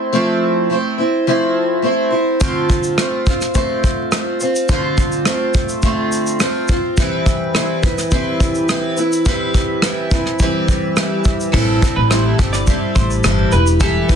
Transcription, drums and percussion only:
2.41 kick, shaker
2.70 kick, shaker
2.83 shaker
2.98 cross-stick, shaker
3.26 kick, shaker
3.41 cross-stick, shaker
3.55 kick, shaker
3.84 kick, shaker
4.12 cross-stick, shaker
4.40 shaker
4.55 shaker
4.69 kick, shaker
4.98 kick, shaker
5.12 shaker
5.25 cross-stick, shaker
5.54 kick, shaker
5.69 shaker
5.82 kick, shaker
6.12 shaker
6.27 shaker
6.40 cross-stick, shaker
6.68 kick, shaker
6.97 kick, shaker
7.26 kick, shaker
7.55 cross-stick, shaker
7.83 kick, shaker
7.98 cross-stick, shaker
8.11 kick, shaker
8.40 kick, shaker
8.55 shaker
8.69 cross-stick, shaker
8.97 shaker
9.12 shaker
9.26 kick, shaker
9.54 kick, shaker
9.82 cross-stick, shaker
10.11 kick, shaker
10.26 cross-stick
10.39 kick, shaker
10.68 kick, shaker
10.97 cross-stick, shaker
11.24 kick, shaker
11.40 shaker
11.54 kick, crash
11.82 kick, shaker
12.11 cross-stick, shaker
12.39 kick, shaker
12.54 cross-stick, shaker
12.67 kick, shaker
12.96 kick, shaker
13.10 shaker
13.24 cross-stick, shaker
13.52 shaker
13.67 shaker
13.80 kick, shaker
14.09 kick, shaker

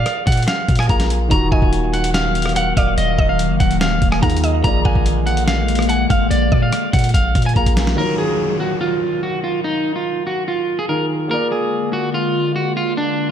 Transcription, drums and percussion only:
0.06 cross-stick, closed hi-hat
0.27 kick, closed hi-hat
0.32 closed hi-hat
0.37 closed hi-hat
0.42 closed hi-hat
0.48 snare, closed hi-hat
0.68 kick, closed hi-hat
0.75 cross-stick, closed hi-hat
0.82 closed hi-hat
0.89 kick, closed hi-hat
1.00 snare, closed hi-hat
1.10 closed hi-hat
1.31 kick, closed hi-hat
1.52 kick
1.62 kick
1.73 closed hi-hat
1.94 closed hi-hat
2.04 closed hi-hat
2.14 snare, closed hi-hat
2.35 closed hi-hat
2.42 cross-stick, closed hi-hat
2.49 closed hi-hat
2.56 closed hi-hat
2.77 kick, closed hi-hat
2.98 closed hi-hat
3.19 kick
3.39 closed hi-hat
3.60 kick, closed hi-hat, open hi-hat
3.71 closed hi-hat
3.81 snare, closed hi-hat
4.02 kick, closed hi-hat
4.12 cross-stick
4.23 kick, closed hi-hat
4.30 closed hi-hat
4.37 closed hi-hat
4.44 closed hi-hat
4.64 kick, closed hi-hat
4.85 kick
4.95 kick
5.06 closed hi-hat
5.27 closed hi-hat
5.37 closed hi-hat
5.48 snare, closed hi-hat
5.68 closed hi-hat
5.75 cross-stick, closed hi-hat
5.82 closed hi-hat
5.89 closed hi-hat
6.10 kick, closed hi-hat
6.31 closed hi-hat
6.52 kick
6.72 cross-stick, closed hi-hat
6.93 kick, closed hi-hat
6.99 closed hi-hat
7.04 closed hi-hat
7.09 closed hi-hat
7.14 kick, closed hi-hat
7.35 kick, closed hi-hat
7.42 closed hi-hat
7.49 closed hi-hat
7.56 kick, closed hi-hat
7.66 kick, closed hi-hat
7.77 snare, closed hi-hat
7.87 snare

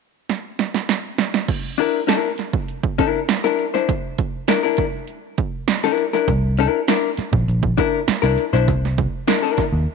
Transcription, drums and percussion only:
0.29 snare
0.59 snare
0.74 snare
0.89 snare
1.18 snare
1.34 snare
1.48 kick, crash
1.78 closed hi-hat
2.08 snare, closed hi-hat
2.38 snare, closed hi-hat
2.53 kick
2.68 closed hi-hat
2.83 kick
2.99 kick, closed hi-hat
3.29 snare, closed hi-hat
3.44 snare
3.59 closed hi-hat
3.75 snare
3.89 kick, closed hi-hat
4.18 kick, closed hi-hat
4.48 snare, closed hi-hat
4.77 kick, closed hi-hat
5.07 closed hi-hat
5.38 kick, closed hi-hat
5.68 snare, closed hi-hat
5.84 snare
5.98 closed hi-hat
6.13 snare
6.28 kick, closed hi-hat
6.57 closed hi-hat
6.88 snare, closed hi-hat
7.17 snare, closed hi-hat
7.33 kick
7.48 closed hi-hat
7.63 kick
7.78 kick, closed hi-hat
8.08 snare, closed hi-hat
8.23 snare
8.38 closed hi-hat
8.54 snare
8.68 kick, closed hi-hat
8.85 snare
8.98 kick, closed hi-hat
9.27 snare, closed hi-hat
9.57 kick, snare, closed hi-hat

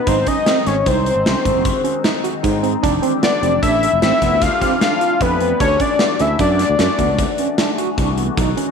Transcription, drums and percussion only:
0.07 kick, closed hi-hat
0.27 kick, closed hi-hat
0.46 snare, closed hi-hat
0.67 snare, closed hi-hat
0.86 kick, closed hi-hat
1.06 closed hi-hat
1.26 snare, closed hi-hat
1.45 kick, closed hi-hat
1.65 kick, closed hi-hat
1.85 closed hi-hat
2.04 snare, closed hi-hat
2.24 closed hi-hat
2.44 kick, closed hi-hat
2.64 closed hi-hat
2.84 kick, closed hi-hat
3.03 closed hi-hat
3.23 snare, closed hi-hat
3.43 closed hi-hat
3.63 kick, closed hi-hat
3.83 closed hi-hat
4.02 snare, closed hi-hat
4.22 kick, snare, closed hi-hat
4.42 kick, snare, closed hi-hat
4.62 kick, snare, closed hi-hat
4.81 snare, closed hi-hat
5.01 closed hi-hat
5.21 kick, closed hi-hat
5.40 closed hi-hat
5.60 kick, closed hi-hat
5.80 kick, closed hi-hat
5.99 snare, closed hi-hat
6.19 snare, closed hi-hat
6.39 kick, closed hi-hat
6.59 snare, closed hi-hat
6.79 snare, closed hi-hat
6.99 kick, closed hi-hat
7.18 kick, closed hi-hat
7.38 closed hi-hat
7.58 snare, closed hi-hat
7.78 closed hi-hat
7.98 kick, closed hi-hat
8.18 closed hi-hat
8.37 kick, closed hi-hat
8.57 closed hi-hat

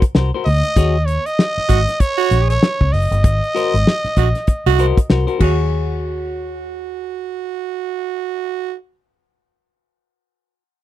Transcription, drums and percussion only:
0.02 kick, closed hi-hat
0.15 snare
0.46 open hi-hat
0.64 closed hi-hat
0.76 kick, closed hi-hat
1.08 closed hi-hat
1.26 closed hi-hat
1.39 snare
1.58 snare
1.69 kick, closed hi-hat
1.88 snare, closed hi-hat
2.00 kick, closed hi-hat
2.19 closed hi-hat
2.31 closed hi-hat
2.50 closed hi-hat
2.63 snare
2.81 kick
2.94 open hi-hat
3.12 closed hi-hat
3.24 kick, closed hi-hat
3.44 closed hi-hat
3.56 closed hi-hat
3.75 closed hi-hat
3.87 snare
4.05 snare, closed hi-hat
4.17 kick, closed hi-hat
4.35 snare, closed hi-hat
4.47 kick, closed hi-hat
4.79 closed hi-hat
4.97 kick, closed hi-hat
5.10 snare
5.28 closed hi-hat
5.40 kick, crash

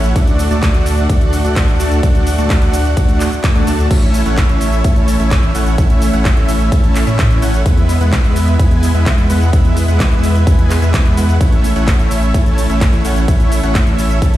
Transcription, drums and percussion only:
0.04 closed hi-hat, shaker
0.16 kick, closed hi-hat, ride, shaker
0.27 closed hi-hat, shaker
0.39 open hi-hat, shaker
0.51 closed hi-hat, shaker
0.63 kick, clap, closed hi-hat, ride, shaker
0.74 closed hi-hat, shaker
0.86 open hi-hat, shaker
0.98 shaker
1.09 kick, closed hi-hat, ride, shaker
1.21 closed hi-hat, shaker
1.33 open hi-hat, shaker
1.45 closed hi-hat, shaker
1.56 kick, clap, closed hi-hat, ride, shaker
1.68 closed hi-hat, shaker
1.80 open hi-hat, shaker
1.92 closed hi-hat, shaker
2.03 kick, closed hi-hat, ride, shaker
2.15 closed hi-hat, shaker
2.27 open hi-hat, shaker
2.38 closed hi-hat, shaker
2.50 kick, clap, closed hi-hat, ride, shaker
2.62 closed hi-hat, shaker
2.73 open hi-hat, shaker
2.85 closed hi-hat, shaker
2.97 kick, closed hi-hat, ride, shaker
3.09 closed hi-hat, shaker
3.20 clap, open hi-hat, shaker
3.32 closed hi-hat, shaker
3.44 kick, clap, closed hi-hat, ride, shaker
3.55 closed hi-hat, shaker
3.67 open hi-hat, shaker
3.79 closed hi-hat, shaker
3.91 kick, closed hi-hat, crash, ride, shaker
4.02 closed hi-hat, shaker
4.14 open hi-hat, shaker
4.26 closed hi-hat, shaker
4.38 kick, clap, closed hi-hat, ride, shaker
4.49 closed hi-hat, shaker
4.61 open hi-hat, shaker
4.73 closed hi-hat, shaker
4.84 kick, closed hi-hat, ride, shaker
4.96 closed hi-hat, shaker
5.08 open hi-hat, shaker
5.20 closed hi-hat, shaker
5.31 kick, clap, closed hi-hat, ride, shaker
5.43 closed hi-hat, shaker
5.55 open hi-hat, shaker
5.67 closed hi-hat, shaker
5.78 kick, closed hi-hat, ride, shaker
5.90 closed hi-hat, shaker
6.02 open hi-hat, shaker
6.14 shaker
6.25 kick, clap, closed hi-hat, ride, shaker
6.37 closed hi-hat, shaker
6.49 open hi-hat, shaker
6.60 closed hi-hat, shaker
6.72 kick, closed hi-hat, ride, shaker
6.84 closed hi-hat, shaker
6.96 clap, open hi-hat, shaker
7.07 closed hi-hat, shaker
7.19 kick, clap, closed hi-hat, ride, shaker
7.31 closed hi-hat, shaker
7.42 open hi-hat, shaker
7.54 closed hi-hat, shaker
7.66 kick, closed hi-hat, ride, shaker
7.77 closed hi-hat, shaker
7.89 open hi-hat, shaker
8.01 closed hi-hat, shaker
8.13 kick, clap, closed hi-hat, ride, shaker
8.24 closed hi-hat, shaker
8.36 open hi-hat, shaker
8.48 shaker
8.59 kick, closed hi-hat, ride, shaker
8.71 closed hi-hat, shaker
8.83 open hi-hat, shaker
8.95 shaker
9.06 kick, clap, closed hi-hat, ride, shaker
9.18 closed hi-hat, shaker
9.30 open hi-hat, shaker
9.41 closed hi-hat, shaker
9.53 kick, closed hi-hat, ride, shaker
9.65 closed hi-hat, shaker
9.77 open hi-hat, shaker
9.88 closed hi-hat, shaker
10.00 kick, clap, closed hi-hat, ride, shaker
10.12 closed hi-hat, shaker
10.24 open hi-hat, shaker
10.35 closed hi-hat, shaker
10.47 kick, closed hi-hat, ride, shaker
10.59 closed hi-hat, shaker
10.71 clap, open hi-hat, shaker
10.82 closed hi-hat, shaker
10.94 kick, clap, closed hi-hat, ride, shaker
11.06 closed hi-hat, shaker
11.17 open hi-hat, shaker
11.29 shaker
11.41 kick, closed hi-hat, ride, shaker
11.52 closed hi-hat, shaker
11.64 open hi-hat, shaker
11.76 closed hi-hat, shaker
11.88 kick, clap, closed hi-hat, ride, shaker
11.99 closed hi-hat, shaker
12.11 open hi-hat, shaker
12.23 closed hi-hat, shaker
12.34 kick, closed hi-hat, ride, shaker
12.46 closed hi-hat, shaker
12.58 open hi-hat, shaker
12.70 closed hi-hat, shaker
12.81 kick, clap, closed hi-hat, ride, shaker
12.93 closed hi-hat, shaker
13.05 open hi-hat, shaker
13.16 closed hi-hat, shaker
13.28 kick, closed hi-hat, ride, shaker
13.40 closed hi-hat, shaker
13.52 open hi-hat, shaker
13.64 closed hi-hat, shaker
13.75 kick, clap, closed hi-hat, ride, shaker
13.87 closed hi-hat, shaker
13.99 open hi-hat, shaker
14.10 closed hi-hat, shaker
14.22 kick, closed hi-hat, ride, shaker
14.34 closed hi-hat

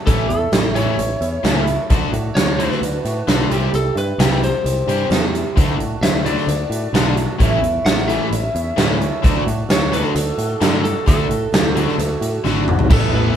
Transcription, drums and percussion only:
0.07 kick, closed hi-hat
0.30 closed hi-hat
0.53 snare, closed hi-hat
0.76 closed hi-hat
0.99 closed hi-hat
1.22 closed hi-hat
1.45 snare, closed hi-hat
1.67 closed hi-hat
1.90 kick, closed hi-hat
2.13 closed hi-hat
2.37 snare, closed hi-hat
2.60 closed hi-hat
2.71 snare
2.83 closed hi-hat
3.05 closed hi-hat
3.28 snare, closed hi-hat
3.51 closed hi-hat
3.74 closed hi-hat
3.97 closed hi-hat
4.20 snare, closed hi-hat
4.32 snare
4.43 closed hi-hat
4.66 closed hi-hat
4.89 closed hi-hat
5.12 snare, closed hi-hat
5.35 closed hi-hat
5.57 kick, closed hi-hat
5.80 closed hi-hat
6.03 snare, closed hi-hat
6.26 closed hi-hat
6.37 snare
6.48 closed hi-hat
6.72 closed hi-hat
6.95 snare, closed hi-hat
7.17 closed hi-hat
7.40 kick, closed hi-hat
7.64 closed hi-hat
7.86 snare, closed hi-hat
7.98 snare
8.09 closed hi-hat
8.32 closed hi-hat
8.56 closed hi-hat
8.78 snare, closed hi-hat
9.01 closed hi-hat
9.24 kick, closed hi-hat
9.48 closed hi-hat
9.70 snare, closed hi-hat
9.93 closed hi-hat
10.15 closed hi-hat
10.38 closed hi-hat
10.62 snare, closed hi-hat
10.85 closed hi-hat
11.07 kick, closed hi-hat
11.31 closed hi-hat
11.54 snare, closed hi-hat
11.76 closed hi-hat
11.88 snare
11.99 closed hi-hat
12.22 closed hi-hat
12.45 snare
12.68 mid tom
12.79 floor tom
12.90 kick, crash

